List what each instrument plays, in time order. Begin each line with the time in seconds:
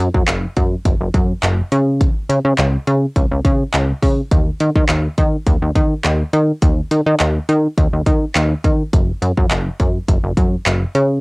0.14 analog synth bass F#2, kick
0.28 analog synth bass F#1, clap, closed hi-hat
0.56 analog synth bass F#2, kick, closed hi-hat
0.85 analog synth bass F#1, kick, closed hi-hat
1.01 analog synth bass F#1
1.14 analog synth bass F#2, kick, closed hi-hat
1.43 analog synth bass F#1, clap, closed hi-hat
1.72 analog synth bass C#3, closed hi-hat
2.01 kick, closed hi-hat
2.29 analog synth bass C#3, closed hi-hat
2.45 analog synth bass C#3
2.58 analog synth bass C#2, clap, closed hi-hat
2.87 analog synth bass C#3, closed hi-hat
3.16 analog synth bass C#2, kick, closed hi-hat
3.31 analog synth bass C#2
3.45 analog synth bass C#3, kick, closed hi-hat
3.74 analog synth bass C#2, clap, closed hi-hat
4.03 analog synth bass C#3, kick, open hi-hat
4.31 analog synth bass D#2, kick, closed hi-hat
4.60 analog synth bass D#3, closed hi-hat
4.76 analog synth bass D#3, kick
4.89 analog synth bass D#2, clap, closed hi-hat
5.18 analog synth bass D#3, kick, closed hi-hat
5.47 analog synth bass D#2, kick, closed hi-hat
5.62 analog synth bass D#2
5.75 analog synth bass D#3, kick, closed hi-hat
6.04 analog synth bass D#2, clap, closed hi-hat
6.33 analog synth bass D#3, closed hi-hat
6.62 analog synth bass D#2, kick, closed hi-hat
6.91 analog synth bass D#3, closed hi-hat
7.06 analog synth bass D#3
7.20 analog synth bass D#2, clap, closed hi-hat
7.49 analog synth bass D#3, closed hi-hat
7.78 analog synth bass D#2, kick, closed hi-hat
7.93 analog synth bass D#2
8.06 analog synth bass D#3, kick, closed hi-hat
8.35 analog synth bass D#2, clap, closed hi-hat
8.64 analog synth bass D#3, kick, closed hi-hat
8.93 analog synth bass F#1, kick, closed hi-hat
9.22 analog synth bass F#2, closed hi-hat
9.37 analog synth bass F#2, kick
9.51 analog synth bass F#1, clap, closed hi-hat
9.80 analog synth bass F#2, kick, closed hi-hat
10.08 analog synth bass F#1, kick, closed hi-hat
10.24 analog synth bass F#1
10.37 analog synth bass F#2, kick, closed hi-hat
10.66 analog synth bass F#1, clap, closed hi-hat
10.95 analog synth bass C#3, closed hi-hat